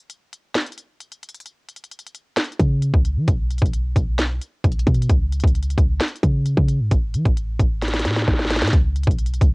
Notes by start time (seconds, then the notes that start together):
0.10 closed hi-hat
0.33 closed hi-hat
0.55 snare, closed hi-hat
0.61 closed hi-hat
0.66 closed hi-hat
0.72 closed hi-hat
0.78 closed hi-hat
1.00 closed hi-hat
1.12 closed hi-hat
1.23 closed hi-hat, open hi-hat
1.29 closed hi-hat
1.34 closed hi-hat
1.40 closed hi-hat
1.46 closed hi-hat
1.69 closed hi-hat
1.76 closed hi-hat
1.84 closed hi-hat
1.91 closed hi-hat
1.99 closed hi-hat
2.07 closed hi-hat
2.15 closed hi-hat
2.37 snare, closed hi-hat
2.44 closed hi-hat
2.52 closed hi-hat
2.60 C#3, kick, closed hi-hat
2.82 closed hi-hat
2.94 C#2, kick
3.05 closed hi-hat
3.16 E3
3.28 B1, kick, closed hi-hat
3.50 closed hi-hat
3.58 B1, kick, closed hi-hat
3.66 closed hi-hat
3.73 closed hi-hat
3.96 B1, kick, closed hi-hat
4.19 snare, closed hi-hat
4.41 closed hi-hat
4.64 B1, kick, closed hi-hat
4.72 closed hi-hat
4.79 closed hi-hat
4.87 B2, kick, closed hi-hat
4.94 closed hi-hat
5.02 closed hi-hat
5.09 C#2, kick, closed hi-hat
5.32 closed hi-hat
5.40 C#2, kick, closed hi-hat
5.47 closed hi-hat
5.55 closed hi-hat
5.63 closed hi-hat
5.70 closed hi-hat
5.78 C#2, kick, closed hi-hat
6.00 snare, closed hi-hat
6.08 closed hi-hat
6.16 closed hi-hat
6.23 C#3, kick, closed hi-hat
6.46 closed hi-hat
6.57 C#3, kick
6.68 closed hi-hat
6.80 G#2
6.91 A1, kick, closed hi-hat
7.14 E3, closed hi-hat
7.25 A1, kick, closed hi-hat
7.37 closed hi-hat
7.59 A1, kick, closed hi-hat
7.82 snare, closed hi-hat
7.88 snare, closed hi-hat
7.94 snare, closed hi-hat
7.99 snare, closed hi-hat
8.05 A2, snare, closed hi-hat
8.11 snare
8.16 snare
8.22 snare
8.28 A1, kick, snare, closed hi-hat
8.33 snare
8.39 snare, closed hi-hat
8.45 snare
8.50 snare, closed hi-hat, open hi-hat
8.56 snare, closed hi-hat
8.62 A2, snare, closed hi-hat
8.67 snare, closed hi-hat
8.73 C#2, kick, closed hi-hat
8.96 closed hi-hat
9.03 B1, kick, closed hi-hat
9.11 closed hi-hat
9.19 closed hi-hat
9.26 closed hi-hat
9.34 closed hi-hat
9.41 C#2, kick, closed hi-hat